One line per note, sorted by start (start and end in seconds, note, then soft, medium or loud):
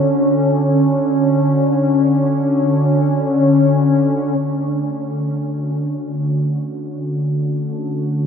0.00 4.36 D3 medium
0.00 4.36 C#4 medium
0.00 4.36 F#4 medium
0.00 4.36 A4 medium
4.37 8.27 D3 medium
4.37 8.27 A3 medium
5.16 8.27 C#4 medium
5.36 8.27 F#4 medium
7.45 8.27 A4 medium